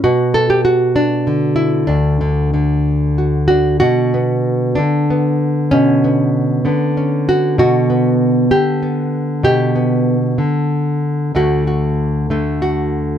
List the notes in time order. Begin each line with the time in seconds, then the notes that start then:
0.04 B2 F#4
0.34 A4
0.50 G4
0.65 F#4
0.96 D4
1.27 D3
1.56 E4
1.87 D2 D4
2.21 D3
2.54 D3
3.18 F#4
3.48 D4 F#4
3.80 B2 F#4
4.14 B3
4.75 D3 D4
5.10 B3
5.71 B2 C#4
6.04 B3
6.65 D3 B3
6.97 C#4
7.29 F#4
7.58 B2 F#4
7.90 B3
8.51 D3 G4
8.83 B3
9.43 B2 G4
9.76 B3
10.38 D3
11.35 D2 D3 A3 F#4
11.67 F#4
12.30 D3 A3
12.62 F#4